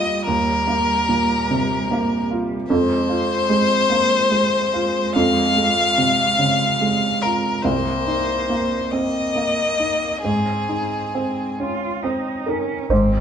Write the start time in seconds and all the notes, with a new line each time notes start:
Already playing: D#2 G3 A#3 C4 F4 D#5
0.26 D#2 A#4
0.67 A#3
1.09 A#2
1.51 C3
1.91 A#3
2.31 F4
2.70 F2 G#3 C5
3.09 F4
3.50 G#3
3.90 A#3
4.31 G#3
4.74 F4
5.16 F2 F5
5.57 G#3
5.98 C3
6.39 C#3
6.81 G#3
7.22 F4 A#4
7.63 C2 C5
7.67 A#3
8.07 D#4
8.50 A#3
8.91 A#3 C4 D#5
9.36 A#3
9.80 D#4
10.23 G#2 C4 G#4
10.69 D#4
11.15 C4
11.60 C#4 F4
12.03 C4 D#4
12.46 C#4 D#4 A#4
12.90 G#1 G#2 G#3 C4 C5